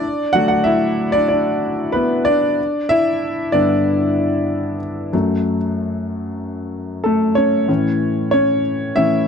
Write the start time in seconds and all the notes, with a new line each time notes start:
Already playing: D4 D5
0.33 D3 F#3 A3 F#4 F#5
0.48 F#4 F#5
0.64 E4 E5
1.12 D4 D5
1.28 D4 D5
1.92 B3 B4
2.25 D4 D5
2.89 E4 E5
3.52 G2 D3 B3 D4 D5
5.13 F#2 F#3 A3
7.04 A3 A4
7.35 C#4 C#5
7.68 A2 E3 C#4
8.31 C#4 C#5
8.96 A2 E3 C#4 E4 E5